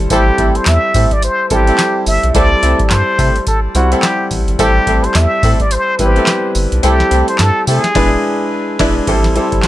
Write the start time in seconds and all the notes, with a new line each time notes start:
Already playing: G3 C4 E4 A4
0.10 A1 G3 A3 C4 E4 G4 A4, kick, closed hi-hat, tambourine
0.38 A1 A3 C4 E4 G4 A4, kick, closed hi-hat
0.55 C5, closed hi-hat
0.66 E2 E5, snare, clap, closed hi-hat, tambourine
0.94 A2 A3 C4 E4 G4 A4, kick, open hi-hat, tambourine
1.11 D5, kick, closed hi-hat
1.22 C5, closed hi-hat, tambourine
1.50 A1 G3 C4 E4 G4 A4, kick, closed hi-hat, tambourine
1.67 A3 C4 E4 G4 A4, closed hi-hat
1.78 snare, clap, closed hi-hat, tambourine
2.06 G1 E5, open hi-hat, tambourine
2.23 B1, closed hi-hat
2.34 C2 G3 A3 C4 E4 G4 A4 D5, kick, closed hi-hat, tambourine
2.62 C2 A3 C4 E4 G4 A4, closed hi-hat
2.79 kick, closed hi-hat
2.90 G2 C5, snare, clap, closed hi-hat, tambourine
3.18 C3 A3 C4 E4 G4 A4, kick, open hi-hat, tambourine
3.36 closed hi-hat
3.47 A4, kick, closed hi-hat, tambourine
3.75 C2 G3 C4 E4 F#4 F#5, closed hi-hat, tambourine
3.91 A3 C4 E4 G4 A4, closed hi-hat
4.03 snare, clap, closed hi-hat, tambourine
4.31 A1, kick, open hi-hat, tambourine
4.48 G#1, closed hi-hat
4.59 A1 G3 A3 C4 E4 G4 A4, kick, closed hi-hat, tambourine
4.87 A1 A3 C4 E4 G4 A4, kick, closed hi-hat
5.04 C5, closed hi-hat
5.14 E2 E5, snare, clap, closed hi-hat, tambourine
5.43 A2 A3 C4 E4 G4 A4, kick, open hi-hat, tambourine
5.60 D5, kick, closed hi-hat
5.71 C5, closed hi-hat, tambourine
5.99 A1 G3 B3 E4 G4 B4, kick, closed hi-hat, tambourine
6.06 C4
6.16 A3 C4 E4 G4 A4, closed hi-hat
6.27 snare, clap, closed hi-hat, tambourine
6.55 G1, open hi-hat, tambourine
6.72 B1, closed hi-hat
6.83 C2 G3 A3 C4 E4 G4 A4, closed hi-hat, tambourine
7.00 snare
7.11 C2 A3 C4 E4 G4 A4, closed hi-hat
7.28 C5, closed hi-hat
7.38 G2 A4, snare, clap, closed hi-hat, tambourine
7.67 C3 A3 C4 E4 G4 G#4 A4, open hi-hat, tambourine
7.84 snare, closed hi-hat
7.95 E1 G#3 B3 D4 E4 G#4 B4, kick, snare, crash
8.79 E1 G#3 B3 D4 E4 G#4 B4, kick, snare, crash
9.07 A1 G3 C4 E4 G4 A4 C5, kick, closed hi-hat, crash
9.24 snare, closed hi-hat
9.35 G3 C4 E4 G4 A4 C5, closed hi-hat
9.52 G1, kick, closed hi-hat
9.63 snare, clap, closed hi-hat